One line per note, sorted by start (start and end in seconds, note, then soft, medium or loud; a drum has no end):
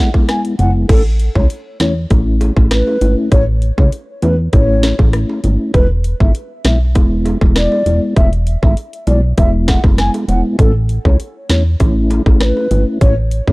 0.00 0.10 G#3 loud
0.00 0.10 B3 medium
0.00 0.11 E4 loud
0.00 0.10 F#5 medium
0.14 0.55 G#3 medium
0.14 0.55 B3 medium
0.14 0.56 E4 medium
0.14 kick loud
0.14 high bongo medium
0.28 0.41 G#5 medium
0.28 cross-stick loud
0.28 snare medium
0.28 closed hi-hat medium
0.45 closed hi-hat medium
0.59 0.85 F#1 medium
0.59 0.87 G#3 medium
0.59 0.87 B3 medium
0.59 0.87 E4 medium
0.59 0.71 F#5 medium
0.59 closed hi-hat medium
0.59 low bongo medium
0.89 1.29 A1 loud
0.89 1.02 A3 loud
0.89 1.03 C#4 medium
0.89 1.03 E4 loud
0.89 1.01 A4 loud
0.89 kick loud
0.89 closed hi-hat medium
0.89 crash loud
0.89 high bongo medium
1.20 closed hi-hat medium
1.35 1.48 C#2 medium
1.35 1.47 A3 medium
1.35 1.48 C#4 medium
1.35 1.48 E4 medium
1.35 1.46 C#5 medium
1.35 kick medium
1.35 high bongo medium
1.50 closed hi-hat medium
1.80 2.06 E2 medium
1.80 1.94 A3 medium
1.80 1.94 C#4 medium
1.80 1.94 E4 medium
1.80 1.92 C#5 medium
1.80 cross-stick loud
1.80 snare loud
1.80 closed hi-hat medium
1.80 low bongo medium
2.10 2.51 A1 loud
2.10 2.53 A3 loud
2.10 2.53 C#4 medium
2.10 2.53 E4 loud
2.10 kick loud
2.10 closed hi-hat medium
2.10 high bongo medium
2.41 closed hi-hat medium
2.41 high bongo medium
2.57 2.83 A1 loud
2.57 2.98 A3 medium
2.57 2.98 C#4 medium
2.57 2.98 E4 medium
2.57 kick loud
2.57 high bongo medium
2.71 3.15 B4 medium
2.71 cross-stick loud
2.71 snare loud
2.71 closed hi-hat medium
2.87 high bongo medium
3.01 3.15 G#1 medium
3.01 3.29 A3 medium
3.01 3.29 C#4 medium
3.01 3.30 E4 medium
3.01 closed hi-hat medium
3.01 low bongo medium
3.31 3.72 A1 loud
3.31 3.45 A3 medium
3.31 3.45 C#4 medium
3.31 3.45 E4 loud
3.31 3.44 C#5 loud
3.31 kick loud
3.31 closed hi-hat medium
3.31 high bongo medium
3.62 closed hi-hat medium
3.78 3.90 C#2 medium
3.78 3.90 A3 medium
3.78 3.90 C#4 medium
3.78 3.90 E4 medium
3.78 3.89 C#5 medium
3.78 kick medium
3.78 high bongo medium
3.92 closed hi-hat medium
4.22 4.49 E2 loud
4.22 4.36 A3 medium
4.22 4.36 C#4 medium
4.22 4.36 E4 medium
4.22 4.35 B4 medium
4.22 closed hi-hat medium
4.22 low bongo medium
4.53 4.93 A1 loud
4.53 4.95 A3 loud
4.53 4.95 C#4 medium
4.53 4.96 E4 loud
4.53 4.97 C#5 loud
4.53 kick loud
4.53 closed hi-hat medium
4.53 high bongo medium
4.83 cross-stick medium
4.83 snare loud
4.83 closed hi-hat medium
4.83 high bongo medium
4.99 5.25 A1 loud
4.99 5.40 A3 medium
4.99 5.40 C#4 medium
4.99 5.40 E4 medium
4.99 kick loud
4.99 high bongo medium
5.13 cross-stick loud
5.13 closed hi-hat medium
5.29 high bongo medium
5.43 5.58 G#1 medium
5.43 5.72 A3 medium
5.43 5.72 C#4 medium
5.43 5.72 E4 medium
5.43 closed hi-hat medium
5.43 low bongo medium
5.74 6.14 E1 loud
5.74 5.87 G#3 loud
5.74 5.88 B3 medium
5.74 5.88 E4 loud
5.74 5.86 B4 loud
5.74 kick loud
5.74 closed hi-hat medium
5.74 high bongo medium
6.04 closed hi-hat medium
6.20 6.33 G#1 loud
6.20 6.32 G#3 medium
6.20 6.32 B3 medium
6.20 6.33 E4 medium
6.20 6.31 E5 medium
6.20 kick medium
6.20 high bongo medium
6.35 closed hi-hat medium
6.64 6.97 B1 medium
6.64 6.78 G#3 medium
6.64 6.78 B3 medium
6.64 6.79 E4 medium
6.64 6.77 E5 medium
6.64 cross-stick loud
6.64 snare loud
6.64 closed hi-hat medium
6.64 low bongo medium
6.95 7.36 E1 loud
6.95 7.38 G#3 loud
6.95 7.38 B3 medium
6.95 7.38 E4 loud
6.95 kick loud
6.95 closed hi-hat medium
6.95 high bongo medium
7.25 closed hi-hat medium
7.25 high bongo medium
7.41 7.68 E1 loud
7.41 7.83 G#3 medium
7.41 7.83 B3 medium
7.41 7.83 E4 medium
7.41 kick loud
7.41 high bongo medium
7.56 8.00 D5 loud
7.56 cross-stick loud
7.56 snare loud
7.56 closed hi-hat medium
7.72 high bongo medium
7.86 8.00 E1 medium
7.86 8.14 G#3 medium
7.86 8.14 B3 medium
7.86 8.14 E4 medium
7.86 closed hi-hat medium
7.86 low bongo medium
8.16 8.57 E1 loud
8.16 8.30 G#3 medium
8.16 8.30 B3 medium
8.16 8.30 E4 loud
8.16 8.29 E5 loud
8.16 kick loud
8.16 closed hi-hat medium
8.16 high bongo medium
8.33 closed hi-hat medium
8.47 closed hi-hat medium
8.63 8.75 G#1 medium
8.63 8.75 G#3 medium
8.63 8.75 B3 medium
8.63 8.75 E4 medium
8.63 8.74 E5 medium
8.63 kick loud
8.63 high bongo medium
8.77 closed hi-hat medium
8.93 closed hi-hat soft
9.07 9.33 B1 medium
9.07 9.21 G#3 medium
9.07 9.21 B3 medium
9.07 9.21 E4 medium
9.07 9.19 D5 medium
9.07 closed hi-hat medium
9.07 low bongo medium
9.38 9.78 E1 loud
9.38 9.80 G#3 loud
9.38 9.80 B3 medium
9.38 9.80 E4 loud
9.38 9.50 E5 medium
9.38 kick loud
9.38 closed hi-hat medium
9.38 high bongo medium
9.68 9.80 F#5 medium
9.68 kick medium
9.68 cross-stick medium
9.68 snare loud
9.68 closed hi-hat medium
9.68 high bongo medium
9.84 10.10 F#1 medium
9.84 10.25 G#3 medium
9.84 10.25 B3 medium
9.84 10.25 E4 medium
9.84 kick loud
9.84 high bongo medium
9.98 10.11 G#5 medium
9.98 cross-stick loud
9.98 snare medium
9.98 closed hi-hat medium
10.14 closed hi-hat medium
10.14 high bongo medium
10.28 10.42 E1 medium
10.28 10.56 G#3 medium
10.28 10.57 B3 medium
10.28 10.57 E4 medium
10.28 10.41 F#5 medium
10.28 closed hi-hat medium
10.28 low bongo medium
10.58 10.99 A1 loud
10.58 10.72 A3 medium
10.58 10.72 C#4 medium
10.58 10.72 E4 loud
10.58 10.71 A4 loud
10.58 kick loud
10.58 closed hi-hat medium
10.58 high bongo medium
10.89 closed hi-hat medium
11.05 11.17 C#2 medium
11.05 11.17 A3 medium
11.05 11.17 C#4 medium
11.05 11.17 E4 medium
11.05 11.16 C#5 medium
11.05 kick medium
11.05 high bongo medium
11.20 closed hi-hat medium
11.49 11.76 E2 medium
11.49 11.63 A3 medium
11.49 11.63 C#4 medium
11.49 11.63 E4 medium
11.49 11.62 C#5 medium
11.49 cross-stick loud
11.49 snare loud
11.49 closed hi-hat medium
11.49 low bongo medium
11.80 12.20 A1 loud
11.80 12.22 A3 loud
11.80 12.23 C#4 medium
11.80 12.23 E4 loud
11.80 kick loud
11.80 closed hi-hat medium
11.80 high bongo medium
12.10 closed hi-hat medium
12.10 high bongo medium
12.26 12.52 A1 medium
12.26 12.67 A3 medium
12.26 12.67 C#4 medium
12.26 12.68 E4 medium
12.26 kick loud
12.26 high bongo medium
12.40 12.84 B4 medium
12.40 12.45 C#5 medium
12.40 cross-stick loud
12.40 snare loud
12.40 closed hi-hat medium
12.57 high bongo medium
12.71 12.85 G#1 medium
12.71 12.99 A3 medium
12.71 12.99 C#4 medium
12.71 12.99 E4 medium
12.71 closed hi-hat medium
12.71 low bongo medium
13.01 13.41 A1 loud
13.01 13.15 A3 medium
13.01 13.15 C#4 medium
13.01 13.15 E4 loud
13.01 13.14 C#5 loud
13.01 kick loud
13.01 closed hi-hat medium
13.01 high bongo medium
13.31 closed hi-hat medium
13.47 13.52 C#2 medium
13.47 13.52 A3 medium
13.47 13.52 C#4 medium
13.47 13.52 E4 medium
13.47 13.52 C#5 medium
13.47 kick medium
13.47 high bongo medium